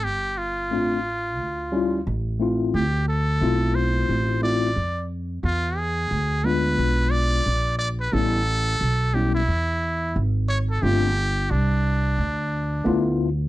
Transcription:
X:1
M:4/4
L:1/16
Q:"Swing 16ths" 1/4=89
K:Ddor
V:1 name="Muted trumpet"
G2 F8- F2 z4 | G2 A4 c4 d4 z2 | F2 ^G4 B4 d4 d B | A6 G E4- E z2 ^c A |
G4 D8- D2 z2 |]
V:2 name="Tine electric piano"
z4 [A,CDF]2 z4 [G,^CEF]2 z2 [A,=CEF]2 | z4 [A,CEF]6 [A,CEF]2 z4 | z6 [^G,B,DF]6 z4 | [G,B,^CE]2 z4 [G,B,CE]2 z8 |
[A,CDF]2 z8 z2 [A,B,EF]2 z2 |]
V:3 name="Upright bass" clef=bass
G,,,4 A,,,4 D,,4 A,,,4 | D,,4 B,,,4 A,,,4 F,,4 | E,,4 D,,4 B,,,4 _B,,,4 | A,,,4 B,,,4 E,,4 ^G,,,4 |
G,,,4 C,,4 D,,4 D,,4 |]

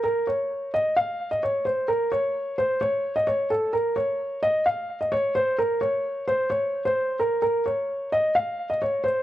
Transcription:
X:1
M:4/4
L:1/16
Q:1/4=130
K:Db
V:1 name="Grand piano"
B2 d4 e2 f3 e d2 c2 | B2 d4 c2 d3 e d2 =A2 | B2 d4 e2 f3 e d2 c2 | B2 d4 c2 d3 c3 B2 |
B2 d4 e2 f3 e d2 c2 |]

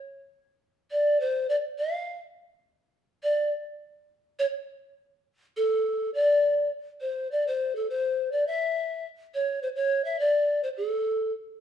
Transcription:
X:1
M:2/4
L:1/16
Q:1/4=103
K:Dm
V:1 name="Pan flute"
z6 d2 | c2 d2 f3 z | z6 d2 | z6 ^c2 |
z6 A2- | A2 d4 z2 | [K:C] c2 d c2 A c2- | c d e4 z2 |
^c2 =c ^c2 e d2- | d c A4 z2 |]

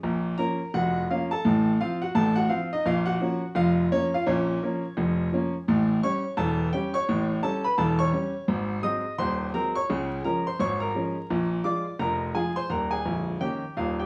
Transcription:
X:1
M:2/4
L:1/16
Q:"Swing 16ths" 1/4=85
K:Bbm
V:1 name="Grand piano"
z2 [Bb]2 [Gg]2 [Ff] [=A=a]- | [=A=a]2 [Ff] [Gg] [Aa] [Gg] [Ff] [Ee] | [Ff] [Gg]3 [Ff]2 [Dd] [Ff] | [Dd]8 |
z2 [^c^c']2 [=A=a]2 [=G=g] [cc']- | [^c^c']2 [=A=a] [_c_c'] [Aa] [^c^c']3 | z2 [ee']2 [cc']2 [Bb] [dd']- | [dd']2 [Bb] [cc'] [dd'] [Bb]3 |
z2 [=d=d']2 [Bb]2 [Aa] [cc'] | [Bb] [Aa]3 [=G=g]2 [Ff] [Gg] |]
V:2 name="Grand piano" clef=bass
[B,,,B,,]2 [F,B,D]2 [F,,,F,,]2 [F,B,D]2 | [=A,,,=A,,]2 [F,C]2 [A,,,A,,]2 [F,C]2 | [B,,,B,,]2 [F,B,D]2 [F,,,F,,]2 [F,B,]2 | [B,,,B,,]2 [F,B,D]2 [F,,,F,,]2 [F,B,D]2 |
[=A,,,=A,,]2 [=G,^C]2 [=E,,,=E,,]2 [G,C]2 | [=A,,,=A,,]2 [=G,^C]2 [=E,,,=E,,]2 [G,C]2 | [A,,,A,,]2 [G,A,C]2 [E,,,E,,]2 [G,A,C]2 | [D,,D,]2 [F,A,D]2 [A,,,A,,]2 [F,A,D]2 |
[B,,,B,,]2 [F,A,F]2 [F,,,F,,]2 [F,A,F]2 | [E,,,E,,]2 [B,,,,B,,,]2 [E,B,D]2 [E,,,E,,]2 |]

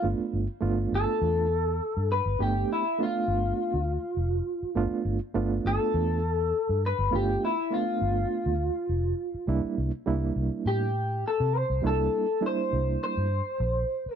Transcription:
X:1
M:4/4
L:1/16
Q:1/4=102
K:Gmix
V:1 name="Clean electric guitar"
z6 A8 B2 | G2 E2 F12 | z6 A8 B2 | G2 E2 F12 |
z8 G4 A2 c2 | A4 c4 c8 |]
V:2 name="Reed electric piano"
[A,B,DF]2 z2 [A,B,DF]6 z6 | [A,B,DG]2 z2 [A,B,DF]6 z6 | [A,B,DF]2 z2 [A,B,DF]6 z6 | [A,B,DF]2 z2 [A,B,DF]6 z6 |
[G,_B,DE]2 z2 [G,B,DE]6 z6 | [G,_B,DE]2 z2 [G,B,DE]6 z6 |]
V:3 name="Fingered electric bass" clef=bass
G,,, z G,,, z G,,,2 G,,, z E,,4- E,, G,,2 G,,, | G,,,2 z4 G,,,2 z D,,2 z F,,,2 z2 | G,,, z G,,, z G,,,2 G,,, z E,,4- E,, G,,2 G,,, | G,,,2 z4 G,,,2 z D,,2 z F,,,2 z2 |
C,, z C,, z C,,2 C,, z A,,4- A,, C,2 C,, | C,,2 z4 C,,2 z G,,2 z _B,,,2 z2 |]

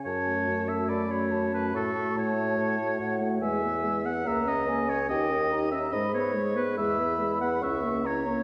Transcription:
X:1
M:4/4
L:1/8
Q:1/4=143
K:F#m
V:1 name="Flute"
a4 b2 a2 | c'2 a2 a2 f2 | [K:Elyd] g3 z a2 g2 | =g2 a2 b2 c'2 |
b4 c'2 a2 |]
V:2 name="Oboe"
c3 e d c2 B | A2 c4- c z | [K:Elyd] e3 f e d2 c | d3 e d c2 B |
e3 f e2 c2 |]
V:3 name="Clarinet"
z F2 F2 F2 F | F F2 F2 F2 F | [K:Elyd] G B G B A c A c | =G A G A ^G B G B |
G B G B E C E C |]
V:4 name="French horn"
z A,2 A,2 A,2 A, | A, A,2 A,2 A,2 A, | [K:Elyd] G, B, G, B, A, C A, C | D C D C G, B, G, B, |
G, B, G, B, C A, C A, |]
V:5 name="Bassoon" clef=bass
F,,2 F,,2 F,,2 F,,2 | A,,2 A,,2 A,,2 A,,2 | [K:Elyd] E,,4 C,,4 | D,,4 G,,4 |
E,,4 C,,4 |]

